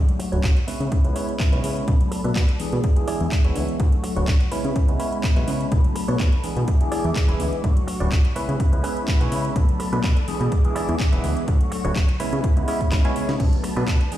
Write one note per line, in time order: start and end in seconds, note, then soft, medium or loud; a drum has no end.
0.00 0.29 F#3 medium
0.00 0.29 A3 medium
0.00 0.30 C#4 medium
0.00 0.30 D4 medium
0.00 0.67 F#4 medium
0.00 0.30 A4 medium
0.00 0.67 C#6 medium
0.09 closed hi-hat soft
0.19 muted clean electric guitar stroke loud
0.19 open hi-hat loud
0.32 0.40 D1 medium
0.32 0.41 F#3 medium
0.32 0.41 A3 medium
0.32 0.41 C#4 medium
0.32 0.41 D4 medium
0.32 0.57 D4 medium
0.32 0.57 F#4 medium
0.32 0.41 B4 loud
0.32 0.57 C#5 loud
0.32 closed hi-hat soft
0.44 0.53 D1 medium
0.44 kick loud
0.44 clap loud
0.44 closed hi-hat medium
0.57 closed hi-hat soft
0.67 0.78 C#3 soft
0.67 1.01 G#3 medium
0.67 1.01 B3 medium
0.67 1.02 C#4 medium
0.67 1.07 C#4 medium
0.67 1.07 E4 medium
0.67 1.02 E4 medium
0.67 1.87 E4 medium
0.67 1.07 B4 medium
0.67 1.02 B4 medium
0.67 1.87 C#5 medium
0.67 2.82 B5 medium
0.67 open hi-hat loud
0.80 0.88 C#3 medium
0.80 closed hi-hat soft
0.92 kick loud
0.92 closed hi-hat medium
1.04 1.12 C#2 medium
1.04 1.49 G#3 loud
1.04 1.50 B3 medium
1.04 1.50 C#4 medium
1.04 1.50 E4 medium
1.04 1.50 B4 loud
1.04 closed hi-hat soft
1.15 1.34 C#4 loud
1.15 1.34 E4 loud
1.15 1.34 C#5 loud
1.15 open hi-hat loud
1.29 closed hi-hat soft
1.40 kick loud
1.40 clap loud
1.40 closed hi-hat medium
1.52 1.60 B1 medium
1.52 1.85 G#3 medium
1.52 1.85 B3 medium
1.52 1.85 C#4 medium
1.52 1.82 C#4 medium
1.52 1.82 E4 medium
1.52 1.85 E4 medium
1.52 1.82 B4 medium
1.52 1.85 C#5 loud
1.52 closed hi-hat soft
1.64 1.81 C#3 medium
1.64 open hi-hat loud
1.77 closed hi-hat soft
1.87 1.97 B1 loud
1.87 2.21 F#3 medium
1.87 2.22 A3 medium
1.87 2.22 B3 medium
1.87 2.22 D4 medium
1.87 2.83 A4 medium
1.87 2.22 A4 medium
1.87 2.83 D5 medium
1.87 kick loud
1.87 closed hi-hat medium
2.01 closed hi-hat soft
2.11 muted clean electric guitar stroke loud
2.11 open hi-hat loud
2.24 2.32 B2 medium
2.24 2.33 F#3 medium
2.24 2.33 A3 medium
2.24 2.33 B3 medium
2.24 2.33 D4 medium
2.24 2.49 D4 medium
2.24 2.49 A4 medium
2.24 2.49 B4 loud
2.24 2.33 B4 loud
2.24 closed hi-hat soft
2.36 2.45 B2 medium
2.36 kick loud
2.36 clap loud
2.36 closed hi-hat medium
2.49 closed hi-hat soft
2.59 2.93 E3 medium
2.59 2.93 G#3 medium
2.59 2.94 B3 medium
2.59 2.94 D4 medium
2.59 2.94 G#4 medium
2.59 open hi-hat loud
2.72 2.80 B2 medium
2.72 muted clean electric guitar stroke soft
2.72 closed hi-hat soft
2.84 3.79 G#4 medium
2.84 3.79 E5 medium
2.84 kick loud
2.84 closed hi-hat medium
2.96 3.41 E3 loud
2.96 3.41 G#3 medium
2.96 3.42 B3 medium
2.96 3.42 D4 medium
2.96 3.42 G#4 loud
2.96 closed hi-hat soft
3.08 3.26 E4 loud
3.08 3.26 G#4 loud
3.08 3.26 D5 loud
3.08 open hi-hat loud
3.21 3.28 E2 loud
3.32 kick loud
3.32 clap loud
3.32 closed hi-hat medium
3.44 3.52 E1 loud
3.44 3.77 E3 medium
3.44 3.77 G#3 medium
3.44 3.77 B3 medium
3.44 3.77 D4 medium
3.44 3.74 E4 medium
3.44 3.74 G#4 medium
3.44 3.77 B4 loud
3.44 3.74 C#5 medium
3.44 closed hi-hat soft
3.56 3.65 D2 medium
3.56 open hi-hat loud
3.68 closed hi-hat soft
3.79 3.89 D2 loud
3.79 4.13 F#3 medium
3.79 4.13 A3 medium
3.79 4.14 C#4 medium
3.79 4.14 D4 medium
3.79 4.51 F#4 medium
3.79 4.14 A4 medium
3.79 4.51 C#6 medium
3.79 kick loud
3.79 closed hi-hat medium
3.92 closed hi-hat soft
4.04 muted clean electric guitar stroke loud
4.04 open hi-hat loud
4.16 4.24 D1 medium
4.16 4.25 F#3 medium
4.16 4.25 A3 medium
4.16 4.25 C#4 medium
4.16 4.25 D4 medium
4.16 4.41 D4 medium
4.16 4.41 F#4 medium
4.16 4.25 B4 loud
4.16 4.41 C#5 medium
4.16 closed hi-hat soft
4.28 4.37 D1 medium
4.28 kick loud
4.28 clap loud
4.28 closed hi-hat medium
4.41 closed hi-hat soft
4.51 4.62 C#3 soft
4.51 4.85 G#3 medium
4.51 4.85 B3 medium
4.51 4.86 C#4 medium
4.51 4.91 C#4 medium
4.51 5.71 E4 medium
4.51 4.86 E4 medium
4.51 4.91 E4 medium
4.51 4.91 B4 loud
4.51 4.86 B4 medium
4.51 5.71 C#5 medium
4.51 6.66 B5 medium
4.51 open hi-hat loud
4.64 4.72 C#3 medium
4.64 closed hi-hat soft
4.76 kick loud
4.76 closed hi-hat medium
4.88 4.96 C#2 medium
4.88 5.33 G#3 loud
4.88 5.33 B3 medium
4.88 5.34 C#4 medium
4.88 5.34 E4 medium
4.88 5.34 B4 loud
4.88 closed hi-hat soft
5.00 5.18 C#4 medium
5.00 5.18 E4 medium
5.00 5.18 B4 loud
5.00 open hi-hat loud
5.12 closed hi-hat soft
5.24 kick loud
5.24 clap loud
5.24 closed hi-hat medium
5.36 5.44 B1 medium
5.36 5.69 G#3 medium
5.36 5.69 B3 medium
5.36 5.69 C#4 medium
5.36 5.66 C#4 medium
5.36 5.66 E4 medium
5.36 5.69 E4 medium
5.36 5.66 B4 medium
5.36 5.69 C#5 loud
5.36 closed hi-hat soft
5.48 5.65 C#3 medium
5.48 open hi-hat loud
5.61 closed hi-hat soft
5.71 5.81 B1 loud
5.71 6.05 F#3 medium
5.71 6.05 A3 medium
5.71 6.06 B3 medium
5.71 6.06 D4 medium
5.71 6.67 D4 medium
5.71 6.06 A4 medium
5.71 6.67 A4 medium
5.71 kick loud
5.71 closed hi-hat medium
5.84 closed hi-hat soft
5.96 muted clean electric guitar stroke loud
5.96 open hi-hat loud
6.08 6.16 B2 medium
6.08 6.17 F#3 medium
6.08 6.17 A3 medium
6.08 6.17 B3 medium
6.08 6.17 D4 medium
6.08 6.33 D4 medium
6.08 6.33 A4 medium
6.08 6.17 B4 medium
6.08 6.33 C#5 loud
6.08 closed hi-hat soft
6.20 6.29 B2 medium
6.20 kick loud
6.20 clap loud
6.20 closed hi-hat medium
6.33 closed hi-hat soft
6.43 6.77 E3 medium
6.43 6.77 G#3 medium
6.43 6.78 B3 medium
6.43 6.78 D4 medium
6.43 6.78 G#4 medium
6.43 open hi-hat loud
6.56 6.64 B2 medium
6.56 muted clean electric guitar stroke soft
6.56 closed hi-hat soft
6.68 7.63 G#4 medium
6.68 7.63 E5 medium
6.68 7.63 D6 medium
6.68 kick loud
6.68 closed hi-hat medium
6.80 7.25 E3 loud
6.80 7.26 G#3 medium
6.80 7.26 B3 medium
6.80 7.26 D4 medium
6.80 7.26 G#4 loud
6.80 closed hi-hat soft
6.92 7.10 E4 loud
6.92 7.10 G#4 medium
6.92 7.10 D5 loud
6.92 open hi-hat loud
7.04 7.12 E2 medium
7.04 closed hi-hat soft
7.16 kick loud
7.16 clap loud
7.16 closed hi-hat medium
7.28 7.36 E1 medium
7.28 7.61 E3 medium
7.28 7.61 G#3 medium
7.28 7.61 B3 medium
7.28 7.61 D4 medium
7.28 7.58 E4 medium
7.28 7.58 G#4 medium
7.28 7.58 B4 loud
7.28 7.61 B4 medium
7.28 closed hi-hat soft
7.40 7.49 D2 medium
7.40 open hi-hat loud
7.53 closed hi-hat soft
7.64 7.73 D2 loud
7.64 7.98 F#3 medium
7.64 7.98 A3 medium
7.64 7.98 C#4 medium
7.64 7.98 D4 medium
7.64 8.35 F#4 medium
7.64 7.98 A4 medium
7.64 8.35 C#6 medium
7.64 kick loud
7.64 closed hi-hat medium
7.77 closed hi-hat soft
7.87 muted clean electric guitar stroke loud
7.87 open hi-hat loud
8.00 8.08 D1 medium
8.00 8.09 F#3 medium
8.00 8.09 A3 medium
8.00 8.09 C#4 medium
8.00 8.25 D4 medium
8.00 8.09 D4 medium
8.00 8.25 F#4 medium
8.00 8.09 B4 loud
8.00 8.25 D5 loud
8.00 closed hi-hat soft
8.12 8.21 D1 medium
8.12 kick loud
8.12 clap loud
8.12 closed hi-hat medium
8.25 closed hi-hat soft
8.35 8.46 C#3 soft
8.35 8.69 G#3 medium
8.35 8.69 B3 medium
8.35 8.70 C#4 medium
8.35 8.75 C#4 medium
8.35 8.75 E4 medium
8.35 9.55 E4 medium
8.35 8.70 E4 medium
8.35 8.75 B4 loud
8.35 8.70 B4 medium
8.35 9.55 C#5 medium
8.35 10.50 B5 loud
8.35 open hi-hat loud
8.49 8.56 C#3 medium
8.49 closed hi-hat soft
8.60 kick loud
8.60 closed hi-hat medium
8.72 8.80 C#2 medium
8.72 9.17 G#3 loud
8.72 9.18 B3 medium
8.72 9.18 C#4 medium
8.72 9.18 E4 medium
8.72 9.18 B4 loud
8.72 closed hi-hat soft
8.83 9.02 C#4 medium
8.83 9.02 E4 medium
8.83 9.02 B4 loud
8.83 8.96 G#5 medium
8.83 open hi-hat loud
8.97 9.07 E5 medium
8.97 closed hi-hat soft
9.08 9.30 F#5 medium
9.08 kick loud
9.08 clap loud
9.08 closed hi-hat medium
9.20 9.28 B1 medium
9.20 9.53 G#3 medium
9.20 9.53 B3 medium
9.20 9.53 C#4 medium
9.20 9.50 C#4 medium
9.20 9.53 E4 medium
9.20 9.50 E4 medium
9.20 9.50 B4 medium
9.20 9.53 C#5 loud
9.20 closed hi-hat soft
9.32 9.49 C#3 medium
9.32 9.54 E5 medium
9.32 open hi-hat loud
9.45 closed hi-hat soft
9.56 9.65 B1 loud
9.56 9.90 F#3 medium
9.56 9.90 A3 medium
9.56 9.90 D4 medium
9.56 10.51 A4 medium
9.56 9.90 A4 medium
9.56 10.51 D5 medium
9.56 kick loud
9.56 closed hi-hat medium
9.69 closed hi-hat soft
9.80 muted clean electric guitar stroke loud
9.80 open hi-hat loud
9.92 10.00 B2 medium
9.92 10.01 F#3 medium
9.92 10.01 A3 medium
9.92 10.01 B3 medium
9.92 10.01 D4 medium
9.92 10.17 D4 medium
9.92 10.17 A4 medium
9.92 10.17 B4 loud
9.92 10.01 B4 loud
9.92 closed hi-hat soft
10.04 10.13 B2 medium
10.04 kick loud
10.04 clap loud
10.04 closed hi-hat medium
10.17 closed hi-hat soft
10.28 10.61 E3 medium
10.28 10.62 G#3 medium
10.28 10.62 B3 medium
10.28 10.62 D4 medium
10.28 10.62 G#4 loud
10.28 open hi-hat medium
10.40 10.48 B2 medium
10.40 muted clean electric guitar stroke soft
10.40 closed hi-hat soft
10.52 11.47 G#4 medium
10.52 11.47 E5 medium
10.52 11.47 D6 medium
10.52 kick loud
10.52 closed hi-hat medium
10.64 11.09 E3 loud
10.64 11.10 G#3 medium
10.64 11.10 B3 loud
10.64 11.10 D4 medium
10.64 11.10 G#4 loud
10.64 closed hi-hat soft
10.76 10.94 E4 loud
10.76 10.94 G#4 medium
10.76 10.94 D5 loud
10.76 open hi-hat loud
10.89 10.96 E2 medium
10.89 closed hi-hat soft
11.00 kick loud
11.00 clap loud
11.00 closed hi-hat medium
11.12 11.20 E1 loud
11.12 11.45 E3 medium
11.12 11.45 G#3 medium
11.12 11.45 B3 medium
11.12 11.45 D4 medium
11.12 11.42 E4 medium
11.12 11.42 G#4 medium
11.12 11.42 B4 medium
11.12 11.45 B4 loud
11.12 closed hi-hat soft
11.24 11.33 D2 medium
11.24 open hi-hat medium
11.37 closed hi-hat soft
11.48 11.57 D2 loud
11.48 11.82 F#3 medium
11.48 11.82 A3 medium
11.48 11.82 C#4 medium
11.48 11.82 D4 medium
11.48 12.19 F#4 medium
11.48 11.82 A4 medium
11.48 12.19 C#6 medium
11.48 kick loud
11.48 closed hi-hat loud
11.61 closed hi-hat soft
11.72 muted clean electric guitar stroke loud
11.72 open hi-hat loud
11.84 11.92 D1 medium
11.84 11.93 F#3 medium
11.84 11.93 A3 medium
11.84 11.93 C#4 medium
11.84 12.09 D4 medium
11.84 11.93 D4 medium
11.84 12.09 F#4 medium
11.84 11.93 B4 loud
11.84 12.09 C#5 loud
11.84 closed hi-hat soft
11.96 12.05 D1 medium
11.96 kick loud
11.96 clap loud
11.96 closed hi-hat loud
12.09 closed hi-hat soft
12.20 12.30 C#3 soft
12.20 12.53 G#3 medium
12.20 12.54 B3 medium
12.20 12.54 C#4 medium
12.20 12.59 C#4 medium
12.20 12.54 E4 medium
12.20 13.39 E4 medium
12.20 12.59 E4 medium
12.20 12.59 B4 loud
12.20 12.54 B4 medium
12.20 13.39 C#5 medium
12.20 13.39 B5 medium
12.20 open hi-hat loud
12.33 12.40 C#3 medium
12.33 closed hi-hat soft
12.44 kick loud
12.44 closed hi-hat medium
12.56 12.64 C#2 medium
12.56 13.01 G#3 loud
12.56 13.02 B3 medium
12.56 13.02 C#4 loud
12.56 13.02 E4 medium
12.56 13.02 B4 loud
12.56 closed hi-hat soft
12.68 12.86 C#4 loud
12.68 12.86 E4 medium
12.68 12.86 G#4 loud
12.68 open hi-hat loud
12.81 kick medium
12.81 closed hi-hat soft
12.92 kick loud
12.92 snare loud
12.92 clap loud
12.92 closed hi-hat medium
13.04 13.37 G#3 medium
13.04 13.37 B3 medium
13.04 13.37 C#4 medium
13.04 13.34 C#4 medium
13.04 13.34 E4 medium
13.04 13.37 E4 medium
13.04 13.34 G#4 medium
13.04 13.37 C#5 loud
13.04 closed hi-hat soft
13.16 13.26 C#3 soft
13.16 open hi-hat loud
13.29 13.36 C#3 medium
13.29 snare medium
13.29 closed hi-hat soft
13.39 13.49 B1 medium
13.39 13.73 F#3 medium
13.39 13.73 A3 medium
13.39 13.74 B3 medium
13.39 13.74 D4 medium
13.39 14.18 D4 medium
13.39 13.74 A4 medium
13.39 14.18 B4 medium
13.39 14.18 A5 medium
13.39 kick loud
13.39 closed hi-hat medium
13.39 crash medium
13.53 closed hi-hat soft
13.64 muted clean electric guitar stroke loud
13.64 open hi-hat loud
13.76 13.84 B2 medium
13.76 13.85 F#3 medium
13.76 13.85 A3 medium
13.76 13.85 B3 medium
13.76 13.85 D4 medium
13.76 14.01 D4 medium
13.76 14.01 A4 medium
13.76 14.01 B4 medium
13.76 13.85 B4 medium
13.76 closed hi-hat soft
13.88 13.97 B2 medium
13.88 kick loud
13.88 clap loud
13.88 closed hi-hat medium
14.01 closed hi-hat soft
14.11 14.18 E3 medium
14.11 14.18 G#3 medium
14.11 14.18 B3 medium
14.11 14.18 D4 medium
14.11 14.18 G#4 medium
14.11 open hi-hat loud